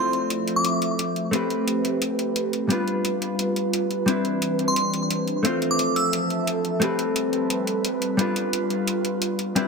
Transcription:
Already playing: F3 A3 C4 F4 E5 C6
0.00 C5
0.13 closed hi-hat
0.30 closed hi-hat
0.47 closed hi-hat
0.56 D6
0.65 closed hi-hat
0.82 closed hi-hat
0.99 closed hi-hat
1.16 closed hi-hat
1.31 A3 C4 G4 B4, closed hi-hat
1.50 closed hi-hat
1.68 closed hi-hat
1.85 closed hi-hat
2.02 closed hi-hat
2.19 closed hi-hat
2.36 closed hi-hat
2.53 closed hi-hat
2.69 G3 B3 D4 F4 B4, closed hi-hat
2.88 closed hi-hat
3.05 closed hi-hat
3.22 closed hi-hat
3.39 closed hi-hat
3.56 closed hi-hat
3.73 closed hi-hat
3.91 closed hi-hat
4.06 E3 G3 C4 D4 E4 B4, closed hi-hat
4.25 closed hi-hat
4.42 closed hi-hat
4.59 closed hi-hat
4.68 C6
4.76 closed hi-hat
4.94 closed hi-hat
5.10 closed hi-hat
5.28 closed hi-hat
5.43 F3 A3 C4 E4 F4 A4 C5 E5, closed hi-hat
5.62 closed hi-hat
5.71 D6
5.79 closed hi-hat
5.96 E6, closed hi-hat
6.13 closed hi-hat
6.30 closed hi-hat
6.47 closed hi-hat
6.65 closed hi-hat
6.80 G3 A3 C4 G4 B4, closed hi-hat
6.99 closed hi-hat
7.16 closed hi-hat
7.33 closed hi-hat
7.50 closed hi-hat
7.67 closed hi-hat
7.85 closed hi-hat
8.02 closed hi-hat
8.17 G3 B3 D4 F4 B4, closed hi-hat
8.36 closed hi-hat
8.53 closed hi-hat
8.70 closed hi-hat
8.87 closed hi-hat
9.05 closed hi-hat
9.22 closed hi-hat
9.39 closed hi-hat
9.55 G3 C4 D4 E4 B4 C5 D5 B5, closed hi-hat, riser

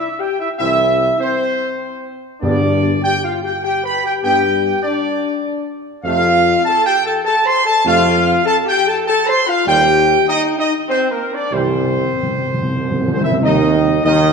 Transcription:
Already playing: E5
0.19 G4 G5
0.39 E4 E5
0.59 C2 E3 C4 E4 E5
1.19 C4 C5
2.41 G2 G3 B3 D4 D5
3.01 G4 G5
3.23 F4 F5
3.42 G4 G5
3.63 G4 G5
3.84 B4 B5
4.04 G4 G5
4.23 G2 G3 B3 G4 G5
4.83 D4 D5
6.03 F2 C3 A3 F4 F5
6.65 A4 A5
6.85 G4 G5
7.05 A4 A5
7.25 A4 A5
7.45 C5 C6
7.65 A4 A5
7.84 F2 C3 A3 F4 F5
8.46 A4 A5
8.66 G4 G5
8.87 A4 A5
9.07 A4 A5
9.26 C5 C6
9.47 F4 F5
9.66 D#2 D#3 G3 G4 G5
10.28 D#4 D#5
10.58 D#4 D#5
10.89 C4 C5
11.11 A#3 A#4
11.32 D4 D5
11.51 C2 C3 E3 G3 C4 C5
11.59 C3
11.67 C3
11.75 C3
11.84 C3
11.91 C3
11.99 C3
12.07 C3
12.15 C3
12.23 C3
12.30 C3
12.38 C3
12.46 C3
12.54 C3
12.61 C3
12.69 C3
12.76 C3
12.84 C3
12.92 C3
13.00 C3
13.08 C3 C4
13.12 C3 C5
13.21 C3 E4 E5
13.32 C3
13.41 D#2 D#3 D#4 D#5
14.04 D#2 D#3 D#4 D#5

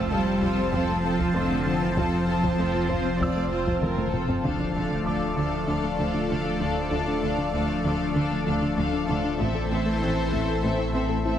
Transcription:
Already playing: F1 F3 A3 C4 F4 C5 D5 F5 A5 D6 E6 F6
0.11 F2 G3 A3 C4 F4 A4 A5
0.27 C4
0.42 F3 C4 F4 A4 A5, taiko
0.57 C4
0.73 F2 F3 C4 F4 A4 A5, taiko
0.89 A3
1.04 C4 F4 A4 A5
1.19 F3, taiko
1.35 F2 D3 A3 C4 F4 A4 A5 C6
1.51 A3
1.66 F3 C4 F4 A4 A5
1.82 E3 C4
1.96 F2 F3 C4 F4 A4 A5, taiko
2.27 C4 F4 A4 A5
2.43 F3, taiko
2.59 F2 A3 C4 F4 A4
2.74 C4
2.89 F3 C4 F4 C5, taiko
3.05 C4
3.20 F2 F3 C4 F4 D5 E6, taiko
3.36 A3
3.51 C4 F4 C5
3.67 F3, taiko
3.82 F2 A3 C4 F4 A#4, taiko mid
3.98 A3, taiko mid
4.13 F3 C4 F4 A4, taiko low-mid
4.28 C4, taiko low
4.44 D1 D2 D3 F3 A3 D4 A4 D5 F5, taiko, impact
4.60 D4
4.75 D2 D3 D4 A4 F5
4.90 D3
5.05 D2 D3 D4 A4 F5 D6
5.36 D2 D3 D4 A4 F5
5.67 D2 D3 D4 A4 F5
5.83 A3
5.98 D2 D3 F3 D4 A4 F5
6.14 D3
6.29 D2 D3 A3 D4 A4 F5
6.45 D4
6.60 D2 D3 D4 A4 F5
6.76 D4
6.91 D2 D3 D4 A4 F5
7.07 D4
7.22 D2 D3 D4 A4 F5
7.38 D3
7.53 D2 D3 D4 A4 F5
7.84 D2 D3 D4 A4 F5
8.15 D2 D3 D4 A4 F5
8.31 A3
8.46 D2 D3 F3 D4 A4 F5
8.62 D3
8.77 D2 D3 A3 D4 A4 F5
8.93 D4
9.08 D2 D3 D4 A4 F5
9.24 D4
9.39 A1 A2 E3 A3 C4 A4 C5 E5, taiko
9.55 A4
9.70 A1 A2 C4 A4 E5
9.86 A3
10.01 A1 A2 C4 A4 E5
10.32 A1 A2 A3 C4 A4 E5, taiko
10.62 A1 A2 A3 C4 A4 E5
10.78 E4
10.94 A1 A2 C4 A4 E5
11.09 A3
11.24 A1 A2 C4 E4 A4 E5

